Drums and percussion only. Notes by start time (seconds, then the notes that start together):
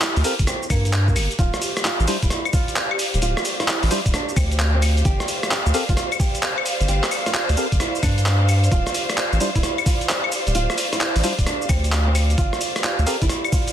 0.01 clap, closed hi-hat, shaker
0.16 open hi-hat, shaker
0.24 open hi-hat, shaker
0.39 kick, closed hi-hat, shaker
0.47 cross-stick, closed hi-hat, shaker
0.62 shaker
0.70 kick, open hi-hat, claves, shaker
0.85 closed hi-hat, shaker
0.93 clap, closed hi-hat, shaker
1.08 kick, shaker
1.16 open hi-hat, claves, shaker
1.31 closed hi-hat, shaker
1.39 kick, closed hi-hat, shaker
1.54 cross-stick, shaker
1.62 open hi-hat, shaker
1.77 cross-stick, closed hi-hat, shaker
1.85 clap, closed hi-hat, shaker
2.00 shaker
2.07 open hi-hat, shaker
2.22 kick, closed hi-hat, shaker
2.30 cross-stick, closed hi-hat, shaker
2.45 claves, shaker
2.53 kick, open hi-hat, shaker
2.68 closed hi-hat, shaker
2.76 clap, closed hi-hat, shaker
2.91 claves
2.99 open hi-hat, shaker
3.14 closed hi-hat, shaker
3.22 closed hi-hat, shaker
3.37 cross-stick, shaker
3.45 open hi-hat, shaker
3.60 cross-stick, closed hi-hat, shaker
3.68 clap, closed hi-hat, shaker
3.83 open hi-hat, shaker
3.91 open hi-hat, shaker
4.06 kick, closed hi-hat, shaker
4.14 cross-stick, closed hi-hat, shaker
4.29 shaker
4.36 kick, open hi-hat, claves, shaker
4.51 closed hi-hat, shaker
4.59 clap, closed hi-hat, shaker
4.82 open hi-hat, claves, shaker
4.97 closed hi-hat, shaker
5.05 kick, closed hi-hat, shaker
5.20 cross-stick, shaker
5.28 open hi-hat, shaker
5.43 cross-stick, closed hi-hat, shaker
5.51 clap, closed hi-hat, shaker
5.66 shaker
5.74 open hi-hat, shaker
5.89 kick, closed hi-hat, shaker
5.97 cross-stick, closed hi-hat, shaker
6.12 claves, shaker
6.20 kick, open hi-hat, shaker
6.35 closed hi-hat, shaker
6.43 clap, closed hi-hat, shaker
6.58 claves
6.66 open hi-hat, shaker
6.81 closed hi-hat, shaker
6.88 closed hi-hat, shaker
7.03 cross-stick, clap, shaker
7.11 open hi-hat, claves, shaker
7.26 cross-stick, closed hi-hat, shaker
7.34 clap, closed hi-hat, shaker
7.49 open hi-hat, shaker
7.57 open hi-hat, shaker
7.72 kick, closed hi-hat, shaker
7.80 cross-stick, closed hi-hat, shaker
7.95 shaker
8.03 kick, open hi-hat, claves, shaker
8.18 closed hi-hat, shaker
8.26 clap, closed hi-hat, shaker
8.49 open hi-hat, claves, shaker
8.64 closed hi-hat, shaker
8.72 kick, closed hi-hat, shaker
8.87 cross-stick, shaker
8.94 open hi-hat, shaker
9.10 cross-stick, closed hi-hat, shaker
9.17 clap, closed hi-hat, shaker
9.32 shaker
9.40 open hi-hat, shaker
9.55 kick, closed hi-hat, shaker
9.63 cross-stick, closed hi-hat, shaker
9.78 claves, shaker
9.86 kick, open hi-hat, shaker
10.01 closed hi-hat, shaker
10.09 clap, closed hi-hat, shaker
10.24 claves
10.32 open hi-hat, shaker
10.47 closed hi-hat, shaker
10.55 closed hi-hat, shaker
10.70 cross-stick, shaker
10.78 open hi-hat, shaker
10.93 cross-stick, closed hi-hat, shaker
11.01 clap, closed hi-hat, shaker
11.16 open hi-hat, shaker
11.24 open hi-hat, shaker
11.38 kick, closed hi-hat, shaker
11.46 cross-stick, closed hi-hat, shaker
11.61 shaker
11.69 kick, open hi-hat, claves, shaker
11.84 closed hi-hat, shaker
11.92 clap, closed hi-hat, shaker
12.15 open hi-hat, claves, shaker
12.30 closed hi-hat, shaker
12.38 kick, closed hi-hat, shaker
12.53 cross-stick, shaker
12.61 open hi-hat, shaker
12.76 cross-stick, closed hi-hat, shaker
12.84 clap, closed hi-hat, shaker
12.99 shaker
13.07 open hi-hat, shaker
13.22 kick, closed hi-hat, shaker
13.29 cross-stick, closed hi-hat, shaker
13.45 claves, shaker
13.52 kick, open hi-hat, shaker
13.68 closed hi-hat, shaker